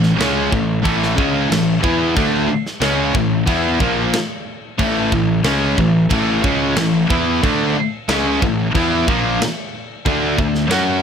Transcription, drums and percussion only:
0.03 snare
0.20 snare, crash
0.52 kick
0.85 kick, crash
1.03 snare
1.18 kick
1.52 snare, crash
1.84 kick
2.17 kick, crash
2.66 snare
2.81 snare, crash
3.15 kick
3.47 kick, crash
3.80 kick
4.13 snare, crash
4.79 kick, crash
5.12 kick
5.44 snare, crash
5.78 kick
6.10 kick, crash
6.44 kick
6.76 snare, crash
7.10 kick
7.44 kick, crash
8.09 snare, crash
8.42 kick
8.75 kick, crash
9.08 kick
9.42 snare, crash
10.06 kick, crash
10.38 kick
10.55 snare
10.71 snare, crash

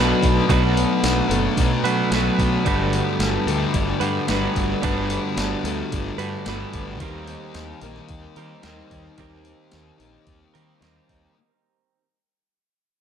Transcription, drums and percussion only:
0.23 kick, open hi-hat
0.49 kick, open hi-hat
0.77 open hi-hat
1.04 snare, open hi-hat
1.31 open hi-hat
1.57 kick, open hi-hat
1.85 open hi-hat
2.12 snare, open hi-hat
2.39 kick, open hi-hat
2.66 kick, open hi-hat
2.93 open hi-hat
3.20 snare, open hi-hat
3.48 open hi-hat
3.74 kick, open hi-hat
4.01 open hi-hat
4.28 snare, open hi-hat
4.56 kick, open hi-hat
4.83 kick, open hi-hat
5.10 open hi-hat
5.37 snare, open hi-hat
5.65 open hi-hat
5.92 kick, open hi-hat
6.19 open hi-hat
6.46 snare, open hi-hat
6.74 kick, open hi-hat
7.00 kick, open hi-hat
7.28 open hi-hat
7.55 snare, open hi-hat
7.81 open hi-hat
7.96 snare
8.09 kick, open hi-hat
8.36 open hi-hat
8.63 snare, open hi-hat
8.91 kick, open hi-hat
9.18 kick, open hi-hat
9.45 open hi-hat
9.72 snare, open hi-hat
10.00 open hi-hat
10.27 kick, open hi-hat
10.55 open hi-hat
10.82 snare, open hi-hat
11.09 kick, open hi-hat

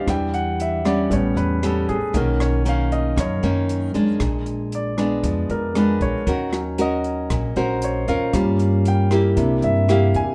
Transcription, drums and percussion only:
0.07 kick, cross-stick, closed hi-hat
0.34 closed hi-hat
0.60 closed hi-hat
0.85 cross-stick, closed hi-hat
1.11 kick, closed hi-hat
1.37 closed hi-hat
1.63 cross-stick, closed hi-hat
1.89 closed hi-hat
2.14 kick, closed hi-hat
2.40 cross-stick, closed hi-hat
2.66 closed hi-hat
2.92 closed hi-hat
3.17 kick, cross-stick, closed hi-hat
3.44 closed hi-hat
3.69 closed hi-hat
3.95 closed hi-hat
4.20 kick, cross-stick, closed hi-hat
4.46 closed hi-hat
4.72 closed hi-hat
4.98 cross-stick, closed hi-hat
5.24 kick, closed hi-hat
5.50 closed hi-hat
5.75 cross-stick, closed hi-hat
6.01 kick, closed hi-hat
6.27 kick, closed hi-hat
6.53 cross-stick, closed hi-hat
6.78 closed hi-hat
7.04 closed hi-hat
7.30 kick, cross-stick, closed hi-hat
7.56 closed hi-hat
7.82 closed hi-hat
8.08 closed hi-hat
8.33 kick, cross-stick, closed hi-hat
8.59 closed hi-hat
8.85 closed hi-hat
9.11 cross-stick, closed hi-hat
9.37 kick, closed hi-hat
9.62 closed hi-hat
9.89 cross-stick, closed hi-hat
10.14 closed hi-hat

